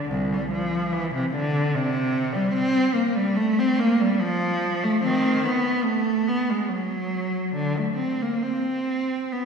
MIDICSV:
0, 0, Header, 1, 2, 480
1, 0, Start_track
1, 0, Tempo, 825309
1, 44, Time_signature, 3, 2, 24, 8
1, 3400, Tempo, 853485
1, 4840, Tempo, 894188
1, 5401, End_track
2, 0, Start_track
2, 0, Title_t, "Cello"
2, 0, Program_c, 0, 42
2, 55, Note_on_c, 0, 36, 81
2, 178, Note_off_c, 0, 36, 0
2, 193, Note_on_c, 0, 55, 72
2, 297, Note_on_c, 0, 53, 82
2, 306, Note_off_c, 0, 55, 0
2, 526, Note_off_c, 0, 53, 0
2, 539, Note_on_c, 0, 52, 91
2, 651, Note_off_c, 0, 52, 0
2, 668, Note_on_c, 0, 48, 77
2, 773, Note_off_c, 0, 48, 0
2, 789, Note_on_c, 0, 50, 92
2, 1011, Note_off_c, 0, 50, 0
2, 1018, Note_on_c, 0, 48, 97
2, 1363, Note_on_c, 0, 55, 81
2, 1364, Note_off_c, 0, 48, 0
2, 1474, Note_on_c, 0, 60, 104
2, 1477, Note_off_c, 0, 55, 0
2, 1705, Note_off_c, 0, 60, 0
2, 1709, Note_on_c, 0, 58, 79
2, 1828, Note_off_c, 0, 58, 0
2, 1835, Note_on_c, 0, 55, 84
2, 1951, Note_off_c, 0, 55, 0
2, 1954, Note_on_c, 0, 57, 89
2, 2071, Note_off_c, 0, 57, 0
2, 2087, Note_on_c, 0, 60, 88
2, 2198, Note_off_c, 0, 60, 0
2, 2204, Note_on_c, 0, 58, 89
2, 2317, Note_off_c, 0, 58, 0
2, 2330, Note_on_c, 0, 55, 82
2, 2441, Note_off_c, 0, 55, 0
2, 2445, Note_on_c, 0, 53, 92
2, 2802, Note_off_c, 0, 53, 0
2, 2812, Note_on_c, 0, 57, 82
2, 2926, Note_off_c, 0, 57, 0
2, 2926, Note_on_c, 0, 51, 75
2, 2931, Note_on_c, 0, 60, 83
2, 3148, Note_off_c, 0, 51, 0
2, 3162, Note_off_c, 0, 60, 0
2, 3167, Note_on_c, 0, 59, 81
2, 3397, Note_on_c, 0, 57, 81
2, 3404, Note_off_c, 0, 59, 0
2, 3636, Note_off_c, 0, 57, 0
2, 3643, Note_on_c, 0, 59, 85
2, 3761, Note_off_c, 0, 59, 0
2, 3766, Note_on_c, 0, 56, 70
2, 3871, Note_on_c, 0, 54, 78
2, 3884, Note_off_c, 0, 56, 0
2, 4356, Note_off_c, 0, 54, 0
2, 4360, Note_on_c, 0, 50, 80
2, 4475, Note_off_c, 0, 50, 0
2, 4487, Note_on_c, 0, 57, 65
2, 4596, Note_on_c, 0, 60, 62
2, 4602, Note_off_c, 0, 57, 0
2, 4715, Note_off_c, 0, 60, 0
2, 4734, Note_on_c, 0, 58, 59
2, 4846, Note_on_c, 0, 60, 69
2, 4848, Note_off_c, 0, 58, 0
2, 5321, Note_off_c, 0, 60, 0
2, 5329, Note_on_c, 0, 59, 62
2, 5401, Note_off_c, 0, 59, 0
2, 5401, End_track
0, 0, End_of_file